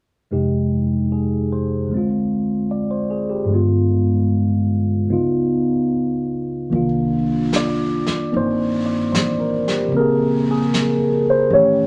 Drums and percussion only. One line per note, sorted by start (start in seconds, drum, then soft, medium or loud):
6.72 brush sweep soft
7.53 snare soft
7.53 hi-hat pedal soft
8.06 snare soft
8.34 brush sweep soft
9.15 snare soft
9.15 hi-hat pedal soft
9.68 snare soft
9.94 brush sweep soft
10.74 snare soft
10.74 hi-hat pedal soft
11.52 brush sweep soft